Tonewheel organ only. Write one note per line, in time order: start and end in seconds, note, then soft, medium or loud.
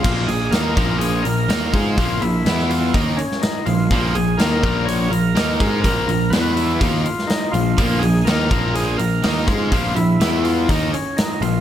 0.00 0.30 F4 loud
0.27 0.53 G#4 medium
0.51 0.97 A#4 medium
0.98 1.25 G#4 loud
1.23 1.74 A#4 loud
1.73 1.97 F4 medium
1.98 2.23 F4 medium
2.21 2.72 E4 loud
2.69 2.95 F4 medium
2.94 3.19 D#4 medium
3.16 3.42 C#4 medium
3.42 3.67 D#4 medium
3.65 4.16 F4 medium
4.14 4.40 G#4 medium
4.37 4.88 A#4 loud
4.85 5.12 C#5 loud
5.10 5.81 A#4 loud
5.82 6.33 A#4 loud
6.30 6.54 B4 medium
6.56 6.81 E4 medium
6.79 7.03 F4 medium
7.04 7.30 F4 medium
7.27 7.54 D#4 medium
7.52 8.03 F4 medium
7.99 8.26 G#4 medium
8.25 8.76 A#4 medium
8.74 8.97 G#4 loud
8.98 9.49 A#4 medium
9.47 9.70 F4 medium
9.71 9.94 F4 loud
9.95 10.46 E4 medium
10.44 10.69 F4 medium
10.68 10.91 D#4 medium
10.93 11.18 C#4 medium
11.17 11.42 D#4 medium
11.42 11.61 F4 medium